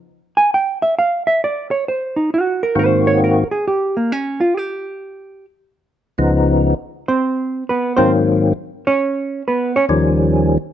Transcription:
X:1
M:4/4
L:1/8
Q:"Swing" 1/4=134
K:Db
V:1 name="Hollow-body jazz guitar"
z a =g _f =f _f =d _d | c E G B c d B A | =G B, D F G4 | z6 z [Cc]- |
[Cc]2 [_C_c] [=C=c] z3 [Dd]- | [Dd]2 [_C_c] [Dd] z4 |]
V:2 name="Tonewheel organ" clef=bass
z8 | z4 [A,,E,B,CG]3 z | z8 | z3 [D,,D,F,_CE]3 z2 |
z3 [A,,E,G,B,C]3 z2 | z4 [E,,E,F,=G,D]3 z |]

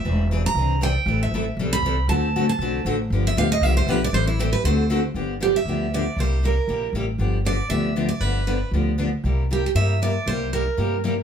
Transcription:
X:1
M:4/4
L:1/16
Q:"Swing" 1/4=235
K:Gmix
V:1 name="Steel-string acoustic guitar"
e4 z2 _b6 g4- | g2 e6 z2 b6 | a6 a6 z4 | z2 e2 f2 _e2 =e2 c2 B2 d2 |
c2 E2 G2 B2 c6- c z | z4 G2 e6 d4 | c4 _B8 z4 | z4 d4 e4 z2 d2 |
B4 B4 z8 | z4 G2 G2 e4 d4 | c4 _B8 z4 |]
V:2 name="Steel-string acoustic guitar"
[E,^B,D^G]2 z2 [E,B,DG]2 z2 [E,B,DG]2 z2 [E,B,DG]2 z2 | [E,G,CEA]2 z2 [E,G,CEA]2 z2 [E,G,CEA]2 z2 [E,G,CEA]2 z2 | [D,A,C^FA]2 z2 [D,A,CFA]2 z2 [D,A,CFA]2 z2 [D,A,CFA]2 z2 | [D,F,B,DG]2 z2 [D,F,B,DG]2 z2 [D,F,B,DG]2 z2 [D,F,B,DG]2 z2 |
[E,G,CEA]2 z2 [E,G,CEA]2 z2 [D,A,C^FA]2 z2 [D,A,CFA]2 z2 | [D,F,B,DG]2 z2 [D,F,B,DG]2 z2 [D,F,B,DG]2 z2 [D,F,B,DG]2 z2 | [C,G,_B,EG]2 z2 [C,G,B,EG]2 z2 [C,G,B,EG]2 z2 [C,G,B,EG]2 z2 | [D,F,B,DG]2 z2 [D,F,B,DG]2 z2 [D,F,B,DG]2 z2 [D,F,B,DG]2 z2 |
[D,F,B,DG]2 z2 [D,F,B,DG]2 z2 [D,F,B,DG]2 z2 [D,F,B,DG]2 z2 | [C,G,_B,EG]2 z2 [C,G,B,EG]2 z2 [C,G,B,EG]2 z2 [C,G,B,EG]2 z2 | [C,G,_B,EG]2 z2 [C,G,B,EG]2 z2 [C,G,B,EG]2 z2 [C,G,B,EG]2 z2 |]
V:3 name="Upright bass" clef=bass
E,,,8 ^B,,,8 | A,,,4 A,,,4 B,,,4 C,,4 | D,,8 B,,,4 A,,,4 | G,,,4 D,,4 C,,4 B,,,4 |
A,,,8 D,,8 | G,,,8 D,,8 | C,,8 _B,,,4 A,,,4 | G,,,8 D,,8 |
G,,,8 D,,8 | C,,8 G,,8 | C,,8 G,,8 |]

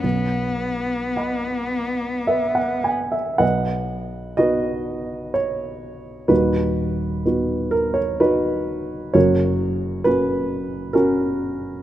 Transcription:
X:1
M:3/4
L:1/16
Q:1/4=63
K:B
V:1 name="Grand piano"
z8 [Be] f g e | [Bdf]4 [FBd]4 c4 | [DFB]6 A c [DFB]4 | [FAc]4 B4 [CFA]4 |]
V:2 name="Grand piano"
B,,,4 [dfb]8 | B,,,4 [B,D]8 | [D,,,D,,]4 [B,DF]8 | [F,,,F,,]4 [A,CF]8 |]
V:3 name="Cello"
B,8- B,2 z2 | z12 | z12 | z12 |]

